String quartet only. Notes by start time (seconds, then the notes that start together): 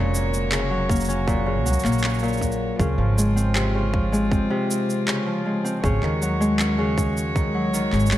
Already playing: A#3 F#4 C#5
2.79 C4 F4
5.84 G#3 F#4 C#5